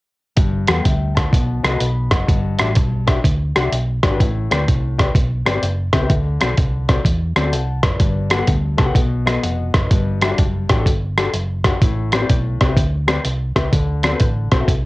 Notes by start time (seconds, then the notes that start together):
0.37 G1 G2, kick, closed hi-hat
0.68 E2 B3 G4 A4 F#5, cross-stick, closed hi-hat
0.83 D2 E5 G5, kick, closed hi-hat
1.15 F#5 A5, kick, cross-stick, closed hi-hat
1.31 B1 B2, kick, closed hi-hat
1.63 C2 B3 F#4 A4 D#5, cross-stick, closed hi-hat
1.70 B3 F#4 A4 D#5
1.78 B1 B5, closed hi-hat
2.11 F#1 D#5 F#5, kick, cross-stick, closed hi-hat
2.27 G1 G2, kick, closed hi-hat
2.58 A1 D4 F#4 G4 E5, cross-stick, closed hi-hat
2.75 B1, kick, closed hi-hat
3.07 D4 F#4 G4 E5, kick, cross-stick, closed hi-hat
3.24 D2, kick, closed hi-hat
3.55 C2 D4 F#4 G4 F#5, cross-stick, closed hi-hat
3.63 D4 F#4 G4 E5
3.72 B1, closed hi-hat
4.03 G#1 D4 F#4 G4 D5, kick, cross-stick, closed hi-hat
4.10 D4 F#4 G4 B4
4.20 A1 A2, kick, closed hi-hat
4.50 D2 C4 G4 B4 D5, cross-stick, closed hi-hat
4.68 C2, kick, closed hi-hat
4.98 C4 G4 B4 D5, kick, cross-stick, closed hi-hat
5.14 B1, kick, closed hi-hat
5.45 G1 C4 G4 B4 D5, cross-stick, closed hi-hat
5.55 C4 G4 B4 D5
5.62 F#1, closed hi-hat
5.93 C#2 C4 G4 B4 E5, kick, cross-stick, closed hi-hat
6.02 C4 G4 B4 E5
6.10 D2 D3, kick, closed hi-hat
6.40 B1 C4 F#4 A4 D5, cross-stick, closed hi-hat
6.58 C2, kick, closed hi-hat
6.88 C4 F#4 A4 D5, kick, cross-stick, closed hi-hat
7.05 E2, kick, closed hi-hat
7.36 D2 C4 F#4 A4 D5, cross-stick, closed hi-hat
7.44 C4 F#4 A4 D5
7.53 C2 F#5 A5, closed hi-hat
7.83 F#1 B4 D5, kick, cross-stick, closed hi-hat
8.00 G1 G2, kick, closed hi-hat
8.30 B3 G4 A4 F#5, cross-stick, closed hi-hat
8.39 B3 G4 A4 F#5
8.48 D2, kick, closed hi-hat
8.78 C2 B3 G4 A4 A5, kick, cross-stick, closed hi-hat
8.85 B3 G4 A4 F#5
8.94 B1 B2, kick, closed hi-hat
9.26 B3 F#4 A4 D#5, cross-stick, closed hi-hat
9.42 F1 D#5 F#5, closed hi-hat
9.74 F#1 B4 D#5, kick, cross-stick, closed hi-hat
9.91 G1 G2, kick, closed hi-hat
10.21 D4 F#4 G4 E5, cross-stick, closed hi-hat
10.30 D4 F#4 G4 D5
10.38 F#1, kick, closed hi-hat
10.69 A1 D4 F#4 G4 G5, kick, cross-stick, closed hi-hat
10.78 D4 F#4 G4 A4
10.86 G1, kick, closed hi-hat
11.18 D4 F#4 G4 A4, cross-stick, closed hi-hat
11.33 F#1, closed hi-hat
11.64 D4 F#4 G4 F#5, kick, cross-stick, closed hi-hat
11.82 A1 A2, kick, closed hi-hat
12.12 C4 G4 B4 D5, cross-stick, closed hi-hat
12.22 C4 G4 B4 D5
12.29 B1, kick, closed hi-hat
12.61 C2 C4 G4 B4 D5, kick, cross-stick, closed hi-hat
12.69 C4 G4 B4 E5
12.77 D2, kick, closed hi-hat
13.08 C4 G4 B4 D5, cross-stick, closed hi-hat
13.25 C2, closed hi-hat
13.56 C#2 C4 G4 B4 E5, kick, cross-stick, closed hi-hat
13.72 D2 D3, kick, closed hi-hat
14.03 C4 F#4 A4 D5, cross-stick, closed hi-hat
14.12 C4 F#4 A4 B4
14.20 A1, kick, closed hi-hat
14.51 B1 C4 F#4 A4 C5, kick, cross-stick, closed hi-hat
14.60 C4 F#4 A4 E5
14.68 C2, kick, closed hi-hat